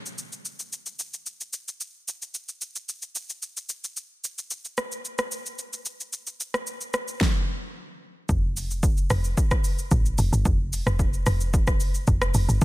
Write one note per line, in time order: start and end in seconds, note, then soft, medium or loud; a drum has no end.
0.06 shaker soft
0.18 shaker medium
0.32 shaker soft
0.45 shaker medium
0.60 shaker medium
0.73 shaker medium
0.86 shaker medium
0.99 shaker medium
1.14 shaker medium
1.26 shaker medium
1.41 shaker medium
1.53 shaker medium
1.68 shaker medium
1.81 shaker medium
2.08 shaker medium
2.22 shaker soft
2.34 shaker medium
2.49 shaker soft
2.61 shaker medium
2.76 shaker medium
2.89 shaker medium
3.02 shaker soft
3.15 shaker medium
3.30 shaker medium
3.42 shaker medium
3.57 shaker medium
3.69 shaker medium
3.84 shaker medium
3.97 shaker medium
4.24 shaker loud
4.38 shaker soft
4.51 shaker medium
4.65 shaker soft
4.78 cross-stick medium
4.78 shaker medium
4.92 shaker medium
5.05 shaker medium
5.18 cross-stick medium
5.18 shaker soft
5.32 shaker medium
5.46 shaker medium
5.59 shaker medium
5.73 shaker medium
5.86 shaker medium
6.00 shaker medium
6.13 shaker medium
6.27 shaker medium
6.40 shaker medium
6.54 cross-stick medium
6.54 shaker soft
6.67 shaker medium
6.81 shaker soft
6.94 cross-stick medium
6.94 shaker medium
7.08 shaker medium
7.21 kick loud
7.21 snare medium
8.29 9.06 F1 loud
8.29 kick loud
8.29 shaker medium
8.57 open hi-hat medium
8.57 shaker loud
8.71 shaker medium
8.83 kick loud
8.83 shaker medium
8.97 shaker soft
9.10 9.34 F1 loud
9.10 cross-stick loud
9.10 open hi-hat soft
9.10 shaker medium
9.24 shaker medium
9.37 kick loud
9.37 shaker medium
9.51 kick loud
9.51 cross-stick loud
9.51 shaker medium
9.64 open hi-hat medium
9.64 shaker loud
9.79 shaker medium
9.91 10.15 A1 medium
9.91 kick medium
9.91 shaker medium
10.06 shaker medium
10.18 10.31 F1 medium
10.18 open hi-hat medium
10.18 shaker medium
10.33 10.44 G1 loud
10.33 shaker medium
10.45 10.81 F1 loud
10.45 kick loud
10.45 shaker medium
10.73 open hi-hat medium
10.73 shaker loud
10.86 11.21 F1 loud
10.86 cross-stick medium
10.86 shaker medium
10.99 kick loud
10.99 shaker medium
11.13 shaker medium
11.26 11.82 F1 loud
11.26 cross-stick medium
11.26 open hi-hat medium
11.26 shaker medium
11.41 shaker medium
11.54 kick loud
11.54 shaker medium
11.67 kick loud
11.67 cross-stick medium
11.67 shaker medium
11.80 12.04 G1 medium
11.80 open hi-hat medium
11.80 shaker medium
11.95 shaker medium
12.07 12.31 F1 loud
12.07 kick medium
12.07 shaker medium
12.22 cross-stick loud
12.22 shaker medium
12.34 12.47 F1 loud
12.34 open hi-hat medium
12.34 shaker medium
12.49 12.60 G1 medium
12.49 shaker medium
12.62 12.65 A#1 loud
12.62 kick loud
12.62 shaker medium